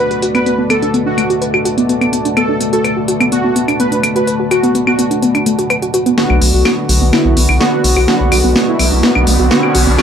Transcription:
Already playing: B2 D3 A3 B3 F#4 D5 A5
0.00 B4
0.11 F#4, closed hi-hat
0.22 F#4, closed hi-hat
0.35 B3 B4, closed hi-hat, claves
0.46 B3, closed hi-hat
0.58 B3
0.70 B3 A4, closed hi-hat, claves
0.82 D4, closed hi-hat
0.94 B3, closed hi-hat
1.06 D4 F#4
1.18 A3, closed hi-hat, claves
1.30 F#4, closed hi-hat
1.41 B4, closed hi-hat
1.54 F#4, claves
1.65 F#4, closed hi-hat
1.77 B3, closed hi-hat
1.89 B3, closed hi-hat
2.01 B3, closed hi-hat, claves
2.13 B3, closed hi-hat
2.25 D4, closed hi-hat
2.37 B3 A4, closed hi-hat, claves
2.49 D4
2.60 A3, closed hi-hat
2.73 F#4 A4, closed hi-hat
2.84 B4, closed hi-hat, claves
2.96 F#4
3.08 F#4, closed hi-hat
3.20 B3, closed hi-hat, claves
3.32 B3 F#4, closed hi-hat
3.44 B3
3.56 B3, closed hi-hat
3.68 D4, closed hi-hat, claves
3.80 B3 B4, closed hi-hat
3.92 D4, closed hi-hat
4.03 A3, closed hi-hat, claves
4.16 F#4 B4, closed hi-hat
4.27 B4, closed hi-hat
4.40 F#4
4.51 F#4, closed hi-hat, claves
4.63 B3, closed hi-hat
4.75 B3, closed hi-hat
4.87 B3 F#4, claves
4.99 B3, closed hi-hat
5.11 D4, closed hi-hat
5.22 B3, closed hi-hat
5.35 D4, closed hi-hat, claves
5.46 A3, closed hi-hat
5.59 F#4, closed hi-hat
5.70 B4, closed hi-hat, claves
5.82 F#4, closed hi-hat
5.94 F#4, closed hi-hat
6.06 B3, closed hi-hat
6.18 B2 D3 B3 F#4 B4 D5 B5, snare, riser
6.30 B1 D4, claves
6.41 B1 A3, open hi-hat
6.54 B1 F#4
6.65 B4, snare, claves
6.77 F#4
6.89 B1 F#4, open hi-hat
7.01 B1 B3
7.13 B3 E4, snare, claves
7.25 B1 B3
7.37 B1 B3, open hi-hat
7.49 B1 D4, claves
7.60 D3 B3 F#4, snare
7.73 D4
7.84 B1 A3, open hi-hat
7.97 B1 F#4, claves
8.08 D3 B3 F#4 B4, snare
8.20 B1 F#4
8.32 B1 F#4, open hi-hat, claves
8.44 B1 B3
8.56 B3, snare
8.68 B3 E4
8.79 B1 B3, open hi-hat, claves
8.92 B1 D4
9.03 B3, snare
9.15 B1 D4, claves
9.27 B1 A3, open hi-hat
9.39 B1 F#4
9.51 D3 B3 F#4 B4, snare
9.63 F#4, claves
9.75 B1 F#4, open hi-hat
9.87 B1 B3
9.98 D3 B3 F#4, snare, claves

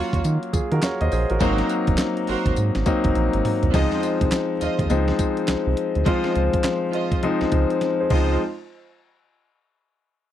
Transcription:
Already playing: F#3 A#3 C#4 F4 F#4 C#5
0.13 D#2, kick, closed hi-hat
0.24 D#3, closed hi-hat, tambourine
0.43 closed hi-hat
0.53 D#3 F4 G#4, kick, closed hi-hat, tambourine
0.72 D#3 F#4 A#4, closed hi-hat
0.82 A#4 C#5, snare, clap, closed hi-hat, tambourine
1.01 D#2 C5 D#5, closed hi-hat
1.12 A#1 G#4 C5, open hi-hat, tambourine
1.30 A1 F#4 A#4, closed hi-hat
1.40 G#1 F#3 A#3 C4 D#4 F#4 A#4 C5, kick, closed hi-hat, tambourine
1.58 snare, closed hi-hat
1.69 closed hi-hat, tambourine
1.87 F#1, kick, closed hi-hat
1.98 snare, clap, closed hi-hat, tambourine
2.17 closed hi-hat
2.27 G#1 F#4 A#4 C5, open hi-hat
2.46 G#1, kick, closed hi-hat
2.56 G#2, closed hi-hat, tambourine
2.75 G#1, snare, closed hi-hat
2.86 F#3 A#3 C4 D#4, kick, closed hi-hat, tambourine
3.04 G#1, kick, closed hi-hat
3.15 A#1, closed hi-hat, high tom
3.33 G#1, closed hi-hat
3.45 mid tom, open hi-hat
3.63 C2, closed hi-hat, floor tom
3.74 C#2 F3 G#3 C4 D#4 F4 C5 D#5, kick, closed hi-hat, crash, tambourine
3.92 snare
4.03 closed hi-hat, tambourine
4.21 C2, kick, closed hi-hat
4.32 snare, clap, closed hi-hat, tambourine
4.61 D#2 F4 C5 D#5, closed hi-hat, tambourine
4.79 D#2, kick, closed hi-hat
4.90 C#2 F3 G#3 C4 D#4, closed hi-hat, tambourine
5.08 snare
5.19 kick, closed hi-hat, tambourine
5.37 closed hi-hat
5.48 C2, snare, clap, closed hi-hat, tambourine
5.67 C2
5.77 closed hi-hat
5.95 D2, closed hi-hat
6.06 F3 G#3 C4 F4 C5 D#5, kick, closed hi-hat
6.24 snare
6.35 C#2, closed hi-hat
6.53 kick, closed hi-hat
6.64 snare, clap, closed hi-hat
6.93 F4 C5 D#5, closed hi-hat
7.12 kick, closed hi-hat
7.23 F3 G#3 C4 D#4, closed hi-hat
7.41 C#2, snare
7.52 C#2, kick, closed hi-hat
7.70 closed hi-hat
7.81 snare, closed hi-hat
8.00 G#4 C5
8.10 C#2 F3 G#3 C4 D#4 F4 C5 D#5, kick, crash

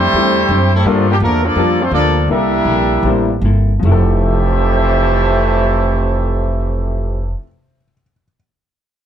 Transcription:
Already playing: F2 G3 A3 C4 E4 G4 C5
0.13 E2 D3 G3 A3 C4 D4
0.17 E4
0.49 F#2 D3 G3 C4 E4
0.74 A2 C3 G3 A3 C4 E4 A4
0.84 G2 A#2 D3 F3 G3 A3 A#3 D4 F4 A4
1.10 A#2 D3 G3 A#3 D4 G4
1.20 E2 D3 F3 G3 A3 A#3 D4 F4 A4 A#4
1.44 F3 A#3 D4 F4 A4 D5
1.55 F2 G3 A#3 D4 F4 A4
1.60 A4
1.81 A3 C4 D4 F4 C5
1.91 D2 F3 G3 A#3 D4 F4 A4 D5
2.28 C2 C3 G3 A#3 D4 E4 G4 A4 A#4 E5
2.65 A#1 C3 A#3 E4 A4
3.03 A1 C3 G3 A#3 D4 E4 C5
3.08 A4
3.42 G1 C3 A#3 E4
3.46 A4
3.80 F1 F2 C3 E3 A3
3.84 A3 E4 G4 C5 E5 A5
3.89 G4 A4
4.26 C5
4.34 E5
4.42 G5
4.51 C6
4.62 E6
4.72 G6
4.84 C7

